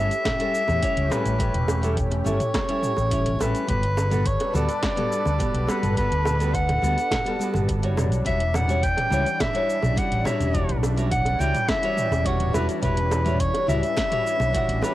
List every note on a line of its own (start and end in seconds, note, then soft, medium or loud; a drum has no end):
0.00 0.11 G3 medium
0.00 3.64 A3 medium
0.00 0.11 C#4 medium
0.00 3.65 C#4 medium
0.00 0.11 E4 medium
0.00 3.65 G4 medium
0.00 0.12 A4 loud
0.00 1.13 E5 loud
0.11 closed hi-hat soft
0.11 cabasa soft
0.25 kick loud
0.25 snare medium
0.25 closed hi-hat medium
0.25 mid tom medium
0.25 high bongo medium
0.25 cabasa soft
0.39 0.62 G3 medium
0.39 0.62 C#4 medium
0.39 0.62 E4 medium
0.39 0.63 A4 loud
0.39 closed hi-hat soft
0.55 cabasa medium
0.68 0.80 E2 medium
0.68 mid tom medium
0.68 high bongo medium
0.68 cabasa soft
0.81 1.07 G3 medium
0.81 1.08 C#4 medium
0.81 1.08 E4 medium
0.81 1.08 C#5 medium
0.81 kick loud
0.81 closed hi-hat medium
0.81 cabasa soft
0.97 1.09 C#2 loud
0.97 closed hi-hat soft
1.10 1.36 G3 medium
1.10 1.36 C#4 medium
1.10 1.36 E4 medium
1.10 1.37 A4 medium
1.10 1.97 B4 loud
1.10 mid tom medium
1.10 high bongo medium
1.10 cabasa medium
1.26 1.50 A1 loud
1.26 closed hi-hat soft
1.26 cabasa soft
1.39 1.53 G3 medium
1.39 1.54 C#4 medium
1.39 1.54 E4 medium
1.39 1.54 A4 medium
1.39 kick loud
1.39 closed hi-hat medium
1.39 cabasa soft
1.54 2.22 E1 medium
1.54 closed hi-hat soft
1.54 mid tom medium
1.68 high bongo medium
1.68 cabasa medium
1.81 1.96 G3 medium
1.81 1.96 C#4 medium
1.81 1.97 E4 medium
1.81 1.97 A4 medium
1.81 closed hi-hat soft
1.81 cabasa soft
1.97 kick loud
1.97 closed hi-hat medium
1.97 mid tom medium
1.97 cabasa soft
2.11 closed hi-hat soft
2.11 high bongo medium
2.24 2.38 G1 medium
2.24 2.39 G3 medium
2.24 2.39 C#4 medium
2.24 2.40 E4 medium
2.24 2.40 A4 loud
2.24 3.42 C#5 loud
2.24 cabasa medium
2.40 closed hi-hat soft
2.40 mid tom medium
2.40 cabasa soft
2.54 kick loud
2.54 snare medium
2.54 closed hi-hat medium
2.54 high bongo loud
2.54 cabasa soft
2.68 2.90 G3 medium
2.68 2.91 C#4 medium
2.68 2.91 E4 medium
2.68 2.92 A4 loud
2.68 closed hi-hat soft
2.83 mid tom medium
2.83 cabasa medium
2.97 3.36 A1 loud
2.97 high bongo medium
2.97 cabasa soft
3.10 3.36 G3 medium
3.10 3.36 C#4 medium
3.10 3.37 E4 medium
3.10 3.37 C#5 medium
3.10 kick loud
3.10 closed hi-hat medium
3.10 cabasa soft
3.26 closed hi-hat soft
3.26 mid tom medium
3.39 3.52 A1 medium
3.39 3.64 G3 medium
3.39 3.65 C#4 medium
3.39 3.65 E4 medium
3.39 3.66 A4 loud
3.39 3.68 B4 medium
3.39 high bongo medium
3.39 cabasa medium
3.55 closed hi-hat soft
3.55 cabasa soft
3.67 4.36 G1 loud
3.67 3.82 G3 medium
3.67 7.93 G3 medium
3.67 3.82 B3 medium
3.67 14.94 D4 medium
3.67 3.83 F#4 medium
3.67 7.93 A4 medium
3.67 3.83 A4 medium
3.67 7.93 B4 medium
3.67 4.28 B4 loud
3.67 kick loud
3.67 closed hi-hat medium
3.67 mid tom medium
3.67 cabasa soft
3.83 closed hi-hat soft
3.97 high bongo medium
3.97 cabasa medium
4.10 4.25 G3 medium
4.10 4.25 B3 medium
4.10 4.26 F#4 medium
4.10 4.26 A4 loud
4.10 closed hi-hat soft
4.10 mid tom medium
4.10 cabasa soft
4.26 4.55 C#5 loud
4.26 kick loud
4.26 closed hi-hat medium
4.26 cabasa soft
4.40 closed hi-hat soft
4.40 high bongo medium
4.53 4.66 D2 medium
4.53 4.68 G3 medium
4.53 4.68 B3 medium
4.53 4.68 F#4 medium
4.53 4.69 A4 loud
4.53 5.71 D5 loud
4.53 mid tom medium
4.53 cabasa medium
4.69 closed hi-hat soft
4.69 cabasa soft
4.83 kick loud
4.83 snare medium
4.83 closed hi-hat medium
4.83 high bongo loud
4.83 cabasa soft
4.96 5.19 G3 loud
4.96 5.19 B3 medium
4.96 5.20 F#4 medium
4.96 5.20 A4 loud
4.96 closed hi-hat soft
4.96 mid tom medium
5.12 cabasa medium
5.25 5.38 D2 medium
5.25 high bongo medium
5.25 cabasa soft
5.39 5.64 G3 medium
5.39 5.65 B3 medium
5.39 5.65 F#4 medium
5.39 5.66 D5 medium
5.39 kick loud
5.39 closed hi-hat medium
5.39 mid tom medium
5.39 cabasa soft
5.54 5.66 B1 loud
5.54 closed hi-hat soft
5.67 5.93 G3 medium
5.67 5.93 B3 medium
5.67 5.94 F#4 medium
5.67 5.94 A4 medium
5.67 5.97 B4 medium
5.67 high bongo medium
5.67 cabasa medium
5.83 6.07 G1 medium
5.83 closed hi-hat soft
5.83 mid tom medium
5.83 cabasa soft
5.96 6.11 G3 medium
5.96 6.11 B3 medium
5.96 6.11 F#4 medium
5.96 6.12 A4 medium
5.96 6.56 B4 loud
5.96 kick loud
5.96 closed hi-hat medium
5.96 cabasa soft
6.12 6.79 D2 medium
6.12 closed hi-hat soft
6.25 mid tom medium
6.25 high bongo medium
6.25 cabasa medium
6.39 6.53 G3 medium
6.39 6.54 B3 medium
6.39 6.54 F#4 medium
6.39 6.55 A4 medium
6.39 closed hi-hat soft
6.39 cabasa soft
6.54 7.69 F#5 loud
6.54 kick loud
6.54 closed hi-hat medium
6.54 cabasa soft
6.69 closed hi-hat soft
6.69 mid tom medium
6.69 high bongo medium
6.82 6.95 D2 medium
6.82 6.96 G3 medium
6.82 6.97 B3 medium
6.82 6.97 F#4 medium
6.82 6.98 A4 medium
6.82 cabasa medium
6.98 closed hi-hat soft
6.98 cabasa soft
7.11 kick loud
7.11 snare medium
7.11 closed hi-hat medium
7.11 mid tom medium
7.11 high bongo medium
7.11 cabasa soft
7.24 7.36 G3 medium
7.24 7.37 B3 medium
7.24 7.37 F#4 medium
7.24 7.38 A4 loud
7.24 closed hi-hat soft
7.39 7.79 G3 loud
7.39 7.79 B3 medium
7.39 7.80 F#4 medium
7.39 7.80 A4 loud
7.39 cabasa medium
7.54 7.97 G1 loud
7.54 mid tom medium
7.54 high bongo medium
7.54 cabasa soft
7.68 kick loud
7.68 closed hi-hat medium
7.68 cabasa soft
7.82 8.22 G3 medium
7.82 8.22 E4 medium
7.82 8.23 F#4 medium
7.82 8.23 C#5 medium
7.82 closed hi-hat soft
7.97 8.12 E1 loud
7.97 14.94 E3 medium
7.97 14.94 G3 medium
7.97 14.94 C#4 medium
7.97 mid tom medium
7.97 high bongo loud
7.97 cabasa medium
8.12 8.23 B1 loud
8.12 closed hi-hat soft
8.12 cabasa soft
8.25 8.93 E1 loud
8.25 8.39 G3 medium
8.25 8.40 E4 medium
8.25 8.40 F#4 medium
8.25 8.41 C#5 medium
8.25 8.57 E5 loud
8.25 kick loud
8.25 closed hi-hat medium
8.25 cabasa soft
8.40 closed hi-hat soft
8.54 8.85 F#5 loud
8.54 mid tom medium
8.54 high bongo medium
8.54 cabasa medium
8.68 8.82 G3 medium
8.68 8.82 E4 medium
8.68 8.83 F#4 medium
8.68 8.83 C#5 medium
8.68 closed hi-hat soft
8.68 cabasa soft
8.83 9.42 G5 loud
8.83 kick loud
8.83 closed hi-hat medium
8.83 cabasa soft
8.97 closed hi-hat soft
8.97 mid tom medium
8.97 high bongo medium
9.10 9.23 C#2 medium
9.10 9.25 G3 loud
9.10 9.25 E4 medium
9.10 9.26 F#4 medium
9.10 9.26 C#5 medium
9.10 cabasa medium
9.26 closed hi-hat soft
9.26 cabasa soft
9.40 10.00 E5 loud
9.40 kick loud
9.40 snare medium
9.40 closed hi-hat medium
9.40 mid tom medium
9.40 high bongo medium
9.40 cabasa soft
9.53 9.76 G3 medium
9.53 9.77 E4 medium
9.53 9.77 F#4 medium
9.53 9.77 C#5 loud
9.53 closed hi-hat soft
9.70 cabasa medium
9.82 9.95 B1 medium
9.82 mid tom medium
9.82 high bongo medium
9.82 cabasa soft
9.96 10.22 G3 medium
9.96 10.22 E4 medium
9.96 10.22 F#4 medium
9.96 10.23 F#5 medium
9.96 10.26 F#5 loud
9.96 kick loud
9.96 closed hi-hat medium
9.96 cabasa soft
10.12 10.23 A1 loud
10.12 closed hi-hat soft
10.24 10.50 G3 medium
10.24 10.50 E4 medium
10.24 10.51 F#4 medium
10.24 10.51 C#5 medium
10.24 10.79 E5 medium
10.24 mid tom medium
10.24 high bongo medium
10.24 cabasa medium
10.40 10.64 E1 loud
10.40 closed hi-hat soft
10.40 cabasa soft
10.53 10.68 G3 medium
10.53 10.68 E4 medium
10.53 10.69 F#4 medium
10.53 10.69 C#5 medium
10.53 kick loud
10.53 closed hi-hat medium
10.53 cabasa soft
10.69 11.36 B1 medium
10.69 closed hi-hat soft
10.69 mid tom medium
10.83 high bongo medium
10.83 cabasa medium
10.96 11.11 G3 medium
10.96 11.11 E4 medium
10.96 11.11 F#4 medium
10.96 11.12 C#5 medium
10.96 closed hi-hat soft
10.96 cabasa soft
11.11 11.42 F#5 loud
11.11 kick loud
11.11 closed hi-hat medium
11.11 mid tom medium
11.11 cabasa soft
11.25 closed hi-hat soft
11.25 high bongo medium
11.39 11.52 C#2 medium
11.39 11.54 G3 medium
11.39 11.54 E4 medium
11.39 11.54 F#4 medium
11.39 11.55 C#5 loud
11.39 11.70 G5 loud
11.39 cabasa medium
11.55 closed hi-hat soft
11.55 mid tom medium
11.55 cabasa soft
11.68 12.27 E5 loud
11.68 kick loud
11.68 snare medium
11.68 closed hi-hat medium
11.68 high bongo loud
11.68 cabasa soft
11.82 12.05 G3 loud
11.82 12.05 E4 medium
11.82 12.06 F#4 medium
11.82 12.06 C#5 loud
11.82 closed hi-hat soft
11.97 mid tom medium
11.97 cabasa medium
12.11 12.50 E1 loud
12.11 high bongo medium
12.11 cabasa soft
12.25 12.50 G3 medium
12.25 12.51 E4 medium
12.25 12.51 F#4 medium
12.25 12.54 C#5 loud
12.25 12.51 F#5 loud
12.25 kick loud
12.25 closed hi-hat medium
12.25 cabasa soft
12.40 closed hi-hat soft
12.40 mid tom medium
12.53 12.66 E1 medium
12.53 12.79 G3 medium
12.53 12.79 E4 medium
12.53 12.80 F#4 medium
12.53 12.67 B4 medium
12.53 12.80 C#5 medium
12.53 high bongo medium
12.53 cabasa medium
12.69 closed hi-hat soft
12.69 cabasa soft
12.82 13.51 E1 loud
12.82 12.96 G3 medium
12.82 12.97 E4 medium
12.82 12.97 F#4 medium
12.82 13.41 B4 loud
12.82 12.98 C#5 medium
12.82 kick loud
12.82 closed hi-hat medium
12.82 mid tom medium
12.82 cabasa soft
12.97 closed hi-hat soft
13.11 high bongo loud
13.11 cabasa medium
13.25 13.39 G3 medium
13.25 13.39 E4 medium
13.25 13.40 F#4 medium
13.25 13.40 C#5 medium
13.25 closed hi-hat soft
13.25 mid tom medium
13.25 cabasa soft
13.40 13.68 C#5 loud
13.40 kick loud
13.40 closed hi-hat medium
13.40 cabasa soft
13.54 closed hi-hat soft
13.54 high bongo medium
13.67 13.80 C#2 medium
13.67 13.82 G3 medium
13.67 13.82 E4 medium
13.67 13.83 F#4 medium
13.67 13.83 C#5 loud
13.67 14.84 E5 loud
13.67 mid tom medium
13.67 cabasa medium
13.83 closed hi-hat soft
13.83 cabasa soft
13.97 kick loud
13.97 snare medium
13.97 closed hi-hat medium
13.97 high bongo medium
13.97 cabasa soft
14.10 14.33 G3 loud
14.10 14.34 E4 medium
14.10 14.34 F#4 medium
14.10 14.34 C#5 loud
14.10 closed hi-hat soft
14.10 mid tom medium
14.27 cabasa medium
14.40 14.52 B1 medium
14.40 high bongo medium
14.40 cabasa soft
14.53 14.79 G3 medium
14.53 14.79 E4 medium
14.53 14.79 F#4 medium
14.53 14.80 F#5 loud
14.53 kick medium
14.53 closed hi-hat medium
14.53 mid tom medium
14.53 cabasa soft
14.68 14.80 A1 loud
14.68 closed hi-hat soft
14.81 14.94 G3 medium
14.81 14.94 E4 medium
14.81 14.94 F#4 medium
14.81 14.94 B4 medium
14.81 14.94 C#5 medium
14.81 high bongo medium
14.81 cabasa medium